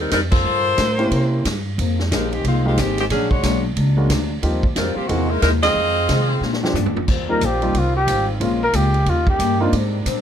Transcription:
Already playing: D#2
0.01 G3 C4 D#4 A#4
0.11 F2 G3 C4 D#4 A#4, kick, snare, hi-hat pedal, ride
0.32 F4 A4 A#4 C5, kick, crash
0.44 G2
0.78 A2, kick, snare, hi-hat pedal, ride
0.98 A#3 C4 C#4 E4 G4, ride
1.11 C3, kick, ride
1.45 G2, kick, snare, hi-hat pedal, ride
1.78 F2 F3 A#3 D#4 G#4, kick, ride
1.99 snare
2.11 A#1 F3 G#3 A#3 D#4 G4 G#4 A#4, kick, snare, hi-hat pedal, ride
2.33 D#3 G#3 C4 G4, ride
2.44 C2 F3 G#3 A#3 C4 D#4 F4 G#4, kick, ride
2.65 G#3 A#3 C4 D#4 F4 G4
2.77 G#1 D#3 F3 G#3 A#3 C4 D#4 G4 G#4, kick, snare, hi-hat pedal, ride
2.98 D#3 G#3 C4 G4, snare, ride
3.10 A#1 A#2 F#3 G#3 C#4 D4 G#4, kick, snare, ride
3.31 G#3 D4 F#4 C#5, kick
3.43 B1 A#2 F#3 G#3 D4, kick, snare, hi-hat pedal, ride
3.76 C#2 A#2 F#3 G#3 D4, kick, ride
3.97 G#3 A#3 C#4 D4 F#4
4.10 D2 A#2 F#3 G#3 D4, kick, snare, hi-hat pedal, ride
4.43 D#2 D#3 F3 G3 A#3 C4 D#4 F4 G4, kick, ride
4.63 kick
4.76 F2 D#3 G3 C4 F4 A#4, kick, snare, hi-hat pedal, ride
4.95 F3 A#3 C4 G4, muted upright bass stroke
5.08 E2 C3 D#3 E3 G#3 A#3 C4 D#4 F#4 G#4, kick, ride
5.12 A#3 E4
5.29 G#3 D#4 E4 A#4
5.42 D#2 C3 G#3 A#3 D#4 E4 A#4, kick, snare, hi-hat pedal, ride
5.63 C4 F4 G#4 D#5, snare, ride
5.74 F2 D#3 G#3 C4
6.09 F2 C3 D#3 G#3 C4, kick, snare, hi-hat pedal, ride
6.41 A#2 G#3 D4 G4, snare
6.53 snare
6.63 F3 G#3 C4 D4 G4, snare
6.73 G2 A#2 G#3 D4, floor tom, hi-hat pedal
6.77 G4
6.86 floor tom
6.95 muted upright bass stroke, floor tom
7.06 D#2 D#3 G3 C4 F4, kick, crash
7.10 F4
7.29 G3 A#3 C4 D#4 F4 A#4
7.41 A#1 D#3 G3 C4 F4, kick, hi-hat pedal, ride
7.45 G4
7.62 G3 A#3 C4 D#4 F4, ride
7.74 C2 D#3 G3 C4 F4, kick, ride
7.79 F4
7.97 G4
8.07 G#1 D#3 G3 C4 F4, kick, hi-hat pedal, ride
8.40 A#1 A#2 C#3 G#3 A#3 C4 C#4 F4, kick, ride
8.64 A#4
8.73 C#2 A#2 G#3 C#4 F4 G4, kick, hi-hat pedal, ride
8.94 ride
9.06 D#2 D#3 G3 A#3 C#4 D#4 F4 G4, kick, ride
9.27 G4, kick
9.39 G2 D#3 A#3 C#4 G4, kick, hi-hat pedal, ride
9.60 A#3 C4 D4 D#4 F4
9.72 G#2 C3 G3 A#3 C4 D4, kick, ride
10.05 G#2 A#2 G3 C4 D4, kick, hi-hat pedal, ride

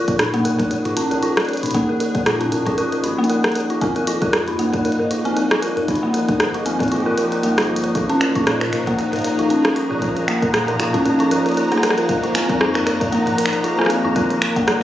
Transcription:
Already playing: F3 A#3 F4 A#4
0.08 A#2 D#4 G#4 A#4, kick, closed hi-hat
0.19 D#4, cross-stick, closed hi-hat
0.34 A#3, closed hi-hat
0.45 A#2 A#4, closed hi-hat
0.59 A#4, kick, closed hi-hat, mid tom
0.71 A#4, closed hi-hat
0.85 F4, closed hi-hat, mid tom
0.97 C#4, closed hi-hat
1.11 A#1 A#4, closed hi-hat
1.23 F4, closed hi-hat
1.37 A#4, cross-stick, closed hi-hat
1.40 closed hi-hat
1.45 A#4, closed hi-hat
1.49 closed hi-hat
1.53 closed hi-hat
1.57 closed hi-hat
1.63 A#2 D#4, closed hi-hat
1.66 closed hi-hat
1.71 A#1 A#3, kick, closed hi-hat
1.75 closed hi-hat
1.89 A#4
2.00 A#4, closed hi-hat
2.15 A#2 A#4, kick, closed hi-hat
2.26 F4, cross-stick, closed hi-hat
2.41 C#4, closed hi-hat
2.52 A#2 A#4, closed hi-hat
2.67 F4, kick, closed hi-hat, mid tom
2.78 A#4, closed hi-hat
2.92 A#4, closed hi-hat
3.04 G#1 D#4, closed hi-hat
3.18 A#3
3.24 closed hi-hat
3.30 A#4, closed hi-hat
3.44 A#4, cross-stick, closed hi-hat
3.52 closed hi-hat
3.56 A#4, closed hi-hat
3.60 closed hi-hat
3.70 F4, closed hi-hat
3.81 F1 C4, kick, closed hi-hat
3.96 A#4, closed hi-hat
4.07 F4, closed hi-hat
4.22 F2 A#4, kick, closed hi-hat
4.33 A#4, cross-stick, closed hi-hat
4.48 D#4, closed hi-hat
4.59 F2 A#3, closed hi-hat
4.74 A#4, kick, closed hi-hat, mid tom
4.85 A#4, closed hi-hat
4.92 closed hi-hat
4.99 A#4, mid tom
5.11 F4, closed hi-hat
5.25 F1 C4, closed hi-hat
5.37 A#4, closed hi-hat
5.51 F4, cross-stick, closed hi-hat
5.62 A#4, closed hi-hat
5.77 F2 A#4, closed hi-hat
5.88 C2 D#4, kick, closed hi-hat
5.96 closed hi-hat
6.03 A#3
6.14 A#4, closed hi-hat
6.29 G1 A#4, kick, closed hi-hat
6.40 A#4, cross-stick, closed hi-hat
6.54 F4, closed hi-hat
6.66 G1 C4, closed hi-hat
6.75 G4
6.80 A#4, kick, closed hi-hat, mid tom
6.83 closed hi-hat
6.88 A#1 F4, closed hi-hat
6.92 closed hi-hat
6.97 closed hi-hat
7.00 closed hi-hat
7.06 G1 A#4
7.18 A#4, closed hi-hat
7.32 A#4, closed hi-hat
7.43 G1 A#3, closed hi-hat
7.58 F4, cross-stick, closed hi-hat
7.60 closed hi-hat
7.62 closed hi-hat
7.65 closed hi-hat
7.67 F4, closed hi-hat
7.76 closed hi-hat
7.84 A#4, closed hi-hat
7.95 A#1 F4 A#5, kick, closed hi-hat
8.10 C#4, closed hi-hat
8.21 A#4, finger snap, closed hi-hat
8.35 A#2 F4 G#4, kick, closed hi-hat
8.47 A#4, cross-stick, closed hi-hat
8.61 A#4, finger snap, closed hi-hat
8.73 A#2 A#4, finger snap, closed hi-hat
8.87 A#3, kick, closed hi-hat
8.99 A#4, closed hi-hat
9.13 A#4, closed hi-hat, mid tom
9.16 closed hi-hat
9.19 closed hi-hat
9.22 A#4, closed hi-hat
9.24 closed hi-hat
9.28 closed hi-hat
9.32 closed hi-hat
9.35 A#1 F4, closed hi-hat
9.39 closed hi-hat
9.50 C#4, closed hi-hat
9.65 A#4, cross-stick, closed hi-hat
9.76 F4, closed hi-hat
9.91 A#2 A#4
10.02 A#1 A#4, kick, closed hi-hat
10.17 A#4, closed hi-hat
10.28 A#3, finger snap, closed hi-hat
10.42 A#2 A#4, kick, closed hi-hat
10.54 A#4, cross-stick, closed hi-hat
10.68 A#4, closed hi-hat
10.80 A#2 F4, finger snap, closed hi-hat
10.94 C#4, kick, closed hi-hat, mid tom
11.05 A#4, closed hi-hat
11.20 F4, closed hi-hat
11.31 G#1 A#4, closed hi-hat
11.46 A#4, closed hi-hat
11.49 closed hi-hat
11.52 closed hi-hat
11.54 A#4, closed hi-hat
11.57 closed hi-hat
11.61 closed hi-hat
11.65 closed hi-hat
11.68 A#3, cross-stick, closed hi-hat
11.72 closed hi-hat
11.77 cross-stick
11.83 A#4, cross-stick, closed hi-hat
11.90 cross-stick
11.98 A#4, closed hi-hat
12.09 F1 A#4, kick, closed hi-hat
12.23 F4, closed hi-hat
12.35 C4, finger snap, closed hi-hat
12.49 F2 A#4, kick, closed hi-hat
12.61 F4, cross-stick
12.75 A#4, finger snap, closed hi-hat
12.86 F2 A#4, finger snap, closed hi-hat
13.01 A#4, kick, closed hi-hat, mid tom
13.12 A#3, closed hi-hat
13.27 A#4, closed hi-hat, mid tom
13.38 A#4, closed hi-hat
13.46 finger snap
13.53 F1 A#4, closed hi-hat
13.64 F4, closed hi-hat
13.79 C4, cross-stick
13.81 cross-stick
13.86 A#4, cross-stick, closed hi-hat
14.04 F2 F4
14.16 C2 A#4, kick, closed hi-hat
14.30 A#4, closed hi-hat
14.42 A#4, finger snap, closed hi-hat
14.56 G1 A#3, kick, closed hi-hat
14.67 A#4, cross-stick, closed hi-hat

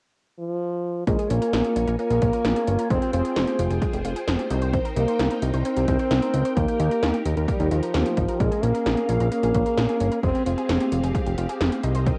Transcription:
0.39 F3
1.07 A#1 G#3 A#3 F4 A#4 C#5 G#5, kick, closed hi-hat
1.19 G#4, closed hi-hat
1.30 A#1 A#3 C#4, closed hi-hat
1.42 A#4, closed hi-hat
1.53 A#1 A#3, snare, closed hi-hat
1.64 G#4, closed hi-hat
1.76 A#1 C#4, closed hi-hat
1.87 A#1 A#4, closed hi-hat
1.99 A#3, closed hi-hat
2.10 A#1 G#4, closed hi-hat
2.22 A#1 C#4, kick, closed hi-hat
2.33 A#4, closed hi-hat
2.45 A#1 A#3, snare, closed hi-hat
2.56 G#4, closed hi-hat
2.67 G1 C#4, closed hi-hat
2.79 A#4, closed hi-hat
2.90 F1 G#3 C4 G#4 C5 G5, kick, closed hi-hat
3.02 G4, closed hi-hat
3.13 F1 C4 F4, closed hi-hat
3.25 G#4, closed hi-hat
3.36 F1 G#3, snare, closed hi-hat
3.47 G4, closed hi-hat
3.59 F1 F4, closed hi-hat
3.71 F1 G#4, closed hi-hat
3.82 G#3, kick, closed hi-hat
3.93 F1 G4, closed hi-hat
4.05 F1 F4, closed hi-hat
4.16 G#4, closed hi-hat
4.28 F1 G#3, snare, closed hi-hat
4.39 G4, closed hi-hat
4.51 C2 D#4 A#4, closed hi-hat
4.62 C5, closed hi-hat
4.74 C4, kick, closed hi-hat
4.85 A#4, closed hi-hat
4.96 C2 A#3 D#4, closed hi-hat
5.08 C5, closed hi-hat
5.19 C2 C4, snare, closed hi-hat
5.31 A#4, closed hi-hat
5.42 C2 D#4, closed hi-hat
5.54 C2 C5, closed hi-hat
5.65 C4, closed hi-hat
5.77 C2 A#4, closed hi-hat
5.88 C2 D#4, kick, closed hi-hat
5.99 C5, closed hi-hat
6.11 C2 C4, snare, closed hi-hat
6.22 A#4, closed hi-hat
6.34 C#2 D#4, closed hi-hat
6.45 C5, closed hi-hat
6.57 D#2 A#3 D#4 G4, kick, closed hi-hat
6.68 G4, closed hi-hat
6.80 D#2 D#4, closed hi-hat
6.91 A#4, closed hi-hat
7.03 D#2 A#3, snare, closed hi-hat
7.14 G4, closed hi-hat
7.25 D#2 D#4, closed hi-hat
7.37 D#2 A#4, closed hi-hat
7.48 G3 A#3, kick, closed hi-hat
7.60 D#2 G4, closed hi-hat
7.71 D#2 F3 D#4, closed hi-hat
7.83 A#4, closed hi-hat
7.94 D#2 A#3, snare, closed hi-hat
8.06 G4, closed hi-hat
8.17 G#1 D#4, kick, closed hi-hat
8.28 A#4, closed hi-hat
8.40 A#1 G#3 A#3 C#4 G#4 F5, kick, closed hi-hat
8.51 G#4, closed hi-hat
8.63 A#1 A#3 C#4, closed hi-hat
8.74 A#4, closed hi-hat
8.86 A#1 A#3, snare, closed hi-hat
8.97 G#4, closed hi-hat
9.09 A#1 C#4, closed hi-hat
9.20 A#1 A#4, closed hi-hat
9.32 A#3, closed hi-hat
9.43 A#1 G#4, closed hi-hat
9.54 A#1 C#4, kick, closed hi-hat
9.66 A#4, closed hi-hat
9.77 A#1 A#3, snare, closed hi-hat
9.89 G#4, closed hi-hat
10.00 G1 C#4, closed hi-hat
10.12 A#4, closed hi-hat
10.23 F1 G#3 C4 G4 F5, kick, closed hi-hat
10.35 G4, closed hi-hat
10.46 F1 C4 F4, closed hi-hat
10.58 G#4, closed hi-hat
10.69 F1 G#3, snare, closed hi-hat
10.80 G4, closed hi-hat
10.92 F1 F4, closed hi-hat
11.03 F1 G#4, closed hi-hat
11.15 G#3, kick, closed hi-hat
11.26 F1 G4, closed hi-hat
11.38 F1 F4, closed hi-hat
11.49 G#4, closed hi-hat
11.61 F1 G#3, snare, closed hi-hat
11.72 G4, closed hi-hat
11.83 C2 D#4 A#4 D#5, closed hi-hat
11.95 C5, closed hi-hat
12.06 C4, kick, closed hi-hat

